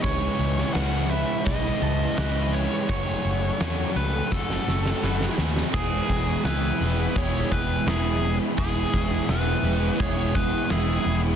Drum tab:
CC |----------------|----------------|x---------------|----------------|
HH |x-x-x-x-x-x-x-x-|x-x-x-x---------|--o-o-o-o-o-o-o-|o---o-o-o-o-o-o-|
SD |---oo-------o---|----o---oooooooo|----o-------o---|----o-------o---|
BD |o-------o-------|o-------o-------|o-o-----o-o-----|o-o-----o-o-----|